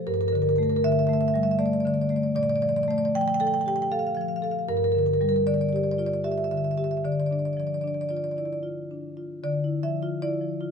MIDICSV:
0, 0, Header, 1, 2, 480
1, 0, Start_track
1, 0, Key_signature, -1, "minor"
1, 0, Tempo, 769231
1, 44, Time_signature, 3, 2, 24, 8
1, 3405, Tempo, 792602
1, 6587, End_track
2, 0, Start_track
2, 0, Title_t, "Marimba"
2, 0, Program_c, 0, 12
2, 42, Note_on_c, 0, 70, 73
2, 44, Note_on_c, 0, 43, 62
2, 86, Note_off_c, 0, 70, 0
2, 86, Note_on_c, 0, 70, 61
2, 129, Note_off_c, 0, 70, 0
2, 129, Note_on_c, 0, 70, 61
2, 175, Note_off_c, 0, 70, 0
2, 175, Note_on_c, 0, 70, 59
2, 203, Note_on_c, 0, 50, 50
2, 221, Note_off_c, 0, 70, 0
2, 221, Note_on_c, 0, 70, 63
2, 262, Note_off_c, 0, 70, 0
2, 262, Note_on_c, 0, 70, 59
2, 305, Note_off_c, 0, 70, 0
2, 305, Note_on_c, 0, 70, 66
2, 349, Note_off_c, 0, 70, 0
2, 349, Note_on_c, 0, 70, 56
2, 364, Note_on_c, 0, 57, 51
2, 392, Note_off_c, 0, 70, 0
2, 392, Note_on_c, 0, 70, 60
2, 433, Note_off_c, 0, 70, 0
2, 433, Note_on_c, 0, 70, 60
2, 463, Note_off_c, 0, 50, 0
2, 476, Note_off_c, 0, 70, 0
2, 476, Note_on_c, 0, 70, 65
2, 506, Note_off_c, 0, 70, 0
2, 525, Note_on_c, 0, 50, 49
2, 526, Note_on_c, 0, 76, 78
2, 574, Note_off_c, 0, 76, 0
2, 574, Note_on_c, 0, 76, 63
2, 618, Note_off_c, 0, 76, 0
2, 618, Note_on_c, 0, 76, 65
2, 622, Note_off_c, 0, 57, 0
2, 667, Note_off_c, 0, 76, 0
2, 667, Note_on_c, 0, 76, 61
2, 680, Note_on_c, 0, 57, 48
2, 708, Note_off_c, 0, 76, 0
2, 708, Note_on_c, 0, 76, 68
2, 753, Note_off_c, 0, 76, 0
2, 753, Note_on_c, 0, 76, 63
2, 779, Note_off_c, 0, 50, 0
2, 799, Note_off_c, 0, 76, 0
2, 799, Note_on_c, 0, 76, 70
2, 836, Note_on_c, 0, 55, 46
2, 846, Note_off_c, 0, 76, 0
2, 846, Note_on_c, 0, 76, 60
2, 894, Note_off_c, 0, 76, 0
2, 894, Note_on_c, 0, 76, 65
2, 934, Note_off_c, 0, 57, 0
2, 944, Note_off_c, 0, 76, 0
2, 944, Note_on_c, 0, 76, 62
2, 979, Note_off_c, 0, 76, 0
2, 991, Note_on_c, 0, 74, 62
2, 992, Note_on_c, 0, 57, 51
2, 996, Note_off_c, 0, 55, 0
2, 1034, Note_off_c, 0, 74, 0
2, 1034, Note_on_c, 0, 74, 50
2, 1082, Note_off_c, 0, 74, 0
2, 1082, Note_on_c, 0, 74, 55
2, 1125, Note_off_c, 0, 74, 0
2, 1125, Note_on_c, 0, 74, 51
2, 1155, Note_on_c, 0, 50, 48
2, 1167, Note_off_c, 0, 74, 0
2, 1167, Note_on_c, 0, 74, 56
2, 1210, Note_off_c, 0, 74, 0
2, 1210, Note_on_c, 0, 74, 49
2, 1246, Note_off_c, 0, 57, 0
2, 1257, Note_off_c, 0, 74, 0
2, 1257, Note_on_c, 0, 74, 54
2, 1305, Note_off_c, 0, 74, 0
2, 1305, Note_on_c, 0, 74, 47
2, 1311, Note_on_c, 0, 57, 47
2, 1349, Note_off_c, 0, 74, 0
2, 1349, Note_on_c, 0, 74, 51
2, 1393, Note_off_c, 0, 74, 0
2, 1393, Note_on_c, 0, 74, 52
2, 1408, Note_off_c, 0, 50, 0
2, 1447, Note_off_c, 0, 43, 0
2, 1449, Note_off_c, 0, 74, 0
2, 1468, Note_on_c, 0, 46, 60
2, 1471, Note_off_c, 0, 57, 0
2, 1472, Note_on_c, 0, 74, 79
2, 1516, Note_off_c, 0, 74, 0
2, 1516, Note_on_c, 0, 74, 64
2, 1557, Note_off_c, 0, 74, 0
2, 1557, Note_on_c, 0, 74, 67
2, 1595, Note_off_c, 0, 74, 0
2, 1595, Note_on_c, 0, 74, 64
2, 1636, Note_off_c, 0, 74, 0
2, 1636, Note_on_c, 0, 74, 70
2, 1640, Note_on_c, 0, 53, 49
2, 1678, Note_off_c, 0, 74, 0
2, 1678, Note_on_c, 0, 74, 64
2, 1725, Note_off_c, 0, 74, 0
2, 1725, Note_on_c, 0, 74, 71
2, 1767, Note_off_c, 0, 74, 0
2, 1767, Note_on_c, 0, 74, 66
2, 1797, Note_on_c, 0, 57, 49
2, 1813, Note_off_c, 0, 74, 0
2, 1813, Note_on_c, 0, 74, 69
2, 1859, Note_off_c, 0, 74, 0
2, 1859, Note_on_c, 0, 74, 62
2, 1902, Note_off_c, 0, 53, 0
2, 1904, Note_off_c, 0, 74, 0
2, 1904, Note_on_c, 0, 74, 67
2, 1945, Note_off_c, 0, 74, 0
2, 1964, Note_on_c, 0, 53, 47
2, 1968, Note_on_c, 0, 79, 88
2, 2004, Note_off_c, 0, 79, 0
2, 2004, Note_on_c, 0, 79, 73
2, 2045, Note_off_c, 0, 79, 0
2, 2045, Note_on_c, 0, 79, 79
2, 2060, Note_off_c, 0, 57, 0
2, 2086, Note_off_c, 0, 79, 0
2, 2086, Note_on_c, 0, 79, 73
2, 2122, Note_off_c, 0, 79, 0
2, 2122, Note_on_c, 0, 79, 79
2, 2125, Note_on_c, 0, 69, 53
2, 2164, Note_off_c, 0, 79, 0
2, 2164, Note_on_c, 0, 79, 73
2, 2208, Note_off_c, 0, 79, 0
2, 2208, Note_on_c, 0, 79, 74
2, 2221, Note_off_c, 0, 53, 0
2, 2253, Note_off_c, 0, 79, 0
2, 2253, Note_on_c, 0, 79, 66
2, 2284, Note_on_c, 0, 67, 42
2, 2296, Note_off_c, 0, 79, 0
2, 2296, Note_on_c, 0, 79, 75
2, 2345, Note_off_c, 0, 79, 0
2, 2345, Note_on_c, 0, 79, 69
2, 2379, Note_off_c, 0, 69, 0
2, 2384, Note_off_c, 0, 79, 0
2, 2384, Note_on_c, 0, 79, 73
2, 2425, Note_off_c, 0, 79, 0
2, 2443, Note_off_c, 0, 67, 0
2, 2444, Note_on_c, 0, 69, 51
2, 2444, Note_on_c, 0, 77, 62
2, 2491, Note_off_c, 0, 77, 0
2, 2491, Note_on_c, 0, 77, 52
2, 2537, Note_off_c, 0, 77, 0
2, 2537, Note_on_c, 0, 77, 57
2, 2588, Note_off_c, 0, 77, 0
2, 2588, Note_on_c, 0, 77, 49
2, 2600, Note_on_c, 0, 53, 48
2, 2627, Note_off_c, 0, 77, 0
2, 2627, Note_on_c, 0, 77, 53
2, 2674, Note_off_c, 0, 77, 0
2, 2674, Note_on_c, 0, 77, 48
2, 2698, Note_off_c, 0, 69, 0
2, 2721, Note_off_c, 0, 77, 0
2, 2721, Note_on_c, 0, 77, 57
2, 2758, Note_on_c, 0, 69, 46
2, 2769, Note_off_c, 0, 77, 0
2, 2769, Note_on_c, 0, 77, 51
2, 2817, Note_off_c, 0, 77, 0
2, 2817, Note_on_c, 0, 77, 53
2, 2857, Note_off_c, 0, 53, 0
2, 2862, Note_off_c, 0, 77, 0
2, 2862, Note_on_c, 0, 77, 48
2, 2895, Note_off_c, 0, 46, 0
2, 2903, Note_off_c, 0, 77, 0
2, 2921, Note_off_c, 0, 69, 0
2, 2924, Note_on_c, 0, 43, 62
2, 2924, Note_on_c, 0, 70, 70
2, 2977, Note_off_c, 0, 70, 0
2, 2977, Note_on_c, 0, 70, 58
2, 3022, Note_off_c, 0, 70, 0
2, 3022, Note_on_c, 0, 70, 63
2, 3070, Note_off_c, 0, 70, 0
2, 3070, Note_on_c, 0, 70, 57
2, 3088, Note_on_c, 0, 50, 42
2, 3111, Note_off_c, 0, 70, 0
2, 3111, Note_on_c, 0, 70, 58
2, 3159, Note_off_c, 0, 70, 0
2, 3159, Note_on_c, 0, 70, 55
2, 3204, Note_off_c, 0, 70, 0
2, 3204, Note_on_c, 0, 70, 59
2, 3250, Note_on_c, 0, 55, 47
2, 3254, Note_off_c, 0, 70, 0
2, 3254, Note_on_c, 0, 70, 53
2, 3300, Note_off_c, 0, 70, 0
2, 3300, Note_on_c, 0, 70, 64
2, 3344, Note_off_c, 0, 50, 0
2, 3345, Note_off_c, 0, 70, 0
2, 3345, Note_on_c, 0, 70, 54
2, 3387, Note_off_c, 0, 70, 0
2, 3411, Note_on_c, 0, 50, 40
2, 3412, Note_on_c, 0, 74, 66
2, 3456, Note_off_c, 0, 74, 0
2, 3456, Note_on_c, 0, 74, 51
2, 3498, Note_off_c, 0, 74, 0
2, 3498, Note_on_c, 0, 74, 56
2, 3502, Note_off_c, 0, 55, 0
2, 3544, Note_off_c, 0, 74, 0
2, 3544, Note_on_c, 0, 74, 52
2, 3569, Note_on_c, 0, 67, 45
2, 3588, Note_off_c, 0, 74, 0
2, 3588, Note_on_c, 0, 74, 57
2, 3635, Note_off_c, 0, 74, 0
2, 3635, Note_on_c, 0, 74, 53
2, 3659, Note_off_c, 0, 50, 0
2, 3682, Note_off_c, 0, 74, 0
2, 3682, Note_on_c, 0, 74, 58
2, 3724, Note_on_c, 0, 65, 39
2, 3729, Note_off_c, 0, 74, 0
2, 3729, Note_on_c, 0, 74, 52
2, 3773, Note_off_c, 0, 74, 0
2, 3773, Note_on_c, 0, 74, 58
2, 3816, Note_off_c, 0, 74, 0
2, 3816, Note_on_c, 0, 74, 54
2, 3818, Note_off_c, 0, 67, 0
2, 3863, Note_off_c, 0, 74, 0
2, 3879, Note_on_c, 0, 67, 41
2, 3880, Note_off_c, 0, 65, 0
2, 3881, Note_on_c, 0, 76, 62
2, 3926, Note_off_c, 0, 76, 0
2, 3926, Note_on_c, 0, 76, 50
2, 3962, Note_off_c, 0, 76, 0
2, 3962, Note_on_c, 0, 76, 56
2, 4002, Note_off_c, 0, 76, 0
2, 4002, Note_on_c, 0, 76, 52
2, 4044, Note_off_c, 0, 76, 0
2, 4044, Note_on_c, 0, 76, 55
2, 4045, Note_on_c, 0, 50, 42
2, 4082, Note_off_c, 0, 76, 0
2, 4082, Note_on_c, 0, 76, 48
2, 4124, Note_off_c, 0, 76, 0
2, 4124, Note_on_c, 0, 76, 53
2, 4135, Note_off_c, 0, 67, 0
2, 4164, Note_off_c, 0, 76, 0
2, 4164, Note_on_c, 0, 76, 48
2, 4204, Note_off_c, 0, 76, 0
2, 4204, Note_on_c, 0, 67, 39
2, 4204, Note_on_c, 0, 76, 53
2, 4243, Note_off_c, 0, 76, 0
2, 4243, Note_on_c, 0, 76, 51
2, 4285, Note_off_c, 0, 76, 0
2, 4285, Note_on_c, 0, 76, 52
2, 4299, Note_off_c, 0, 50, 0
2, 4322, Note_off_c, 0, 76, 0
2, 4322, Note_on_c, 0, 76, 48
2, 4337, Note_off_c, 0, 43, 0
2, 4343, Note_off_c, 0, 76, 0
2, 4363, Note_off_c, 0, 67, 0
2, 4367, Note_on_c, 0, 50, 50
2, 4370, Note_on_c, 0, 74, 57
2, 4412, Note_off_c, 0, 74, 0
2, 4412, Note_on_c, 0, 74, 43
2, 4458, Note_off_c, 0, 74, 0
2, 4458, Note_on_c, 0, 74, 52
2, 4499, Note_off_c, 0, 74, 0
2, 4499, Note_on_c, 0, 74, 48
2, 4528, Note_on_c, 0, 62, 33
2, 4536, Note_off_c, 0, 74, 0
2, 4536, Note_on_c, 0, 74, 48
2, 4576, Note_off_c, 0, 74, 0
2, 4576, Note_on_c, 0, 74, 43
2, 4614, Note_off_c, 0, 74, 0
2, 4614, Note_on_c, 0, 74, 49
2, 4660, Note_off_c, 0, 74, 0
2, 4660, Note_on_c, 0, 74, 47
2, 4684, Note_on_c, 0, 53, 39
2, 4700, Note_off_c, 0, 74, 0
2, 4700, Note_on_c, 0, 74, 47
2, 4744, Note_off_c, 0, 74, 0
2, 4744, Note_on_c, 0, 74, 44
2, 4784, Note_off_c, 0, 62, 0
2, 4789, Note_off_c, 0, 74, 0
2, 4789, Note_on_c, 0, 74, 46
2, 4831, Note_off_c, 0, 74, 0
2, 4831, Note_on_c, 0, 74, 46
2, 4846, Note_on_c, 0, 62, 36
2, 4870, Note_off_c, 0, 74, 0
2, 4870, Note_on_c, 0, 74, 51
2, 4911, Note_off_c, 0, 74, 0
2, 4911, Note_on_c, 0, 74, 48
2, 4942, Note_off_c, 0, 53, 0
2, 4953, Note_off_c, 0, 74, 0
2, 4953, Note_on_c, 0, 74, 50
2, 4999, Note_off_c, 0, 74, 0
2, 4999, Note_on_c, 0, 74, 46
2, 5009, Note_on_c, 0, 65, 39
2, 5046, Note_off_c, 0, 74, 0
2, 5046, Note_on_c, 0, 74, 49
2, 5090, Note_off_c, 0, 74, 0
2, 5090, Note_on_c, 0, 74, 46
2, 5104, Note_off_c, 0, 62, 0
2, 5135, Note_off_c, 0, 74, 0
2, 5135, Note_on_c, 0, 74, 46
2, 5169, Note_on_c, 0, 64, 28
2, 5175, Note_off_c, 0, 74, 0
2, 5175, Note_on_c, 0, 74, 44
2, 5220, Note_off_c, 0, 74, 0
2, 5220, Note_on_c, 0, 74, 47
2, 5264, Note_off_c, 0, 74, 0
2, 5264, Note_on_c, 0, 74, 46
2, 5267, Note_off_c, 0, 65, 0
2, 5312, Note_off_c, 0, 74, 0
2, 5327, Note_on_c, 0, 65, 36
2, 5332, Note_off_c, 0, 64, 0
2, 5496, Note_on_c, 0, 62, 30
2, 5591, Note_off_c, 0, 65, 0
2, 5654, Note_on_c, 0, 65, 34
2, 5756, Note_off_c, 0, 62, 0
2, 5798, Note_off_c, 0, 50, 0
2, 5814, Note_on_c, 0, 50, 50
2, 5815, Note_on_c, 0, 74, 67
2, 5817, Note_off_c, 0, 65, 0
2, 5939, Note_on_c, 0, 64, 37
2, 6045, Note_off_c, 0, 74, 0
2, 6055, Note_on_c, 0, 53, 43
2, 6055, Note_on_c, 0, 76, 67
2, 6128, Note_off_c, 0, 64, 0
2, 6172, Note_on_c, 0, 65, 46
2, 6245, Note_off_c, 0, 53, 0
2, 6283, Note_off_c, 0, 76, 0
2, 6291, Note_on_c, 0, 74, 70
2, 6292, Note_on_c, 0, 64, 42
2, 6362, Note_off_c, 0, 65, 0
2, 6406, Note_on_c, 0, 53, 38
2, 6480, Note_off_c, 0, 64, 0
2, 6523, Note_on_c, 0, 65, 42
2, 6587, Note_off_c, 0, 50, 0
2, 6587, Note_off_c, 0, 53, 0
2, 6587, Note_off_c, 0, 65, 0
2, 6587, Note_off_c, 0, 74, 0
2, 6587, End_track
0, 0, End_of_file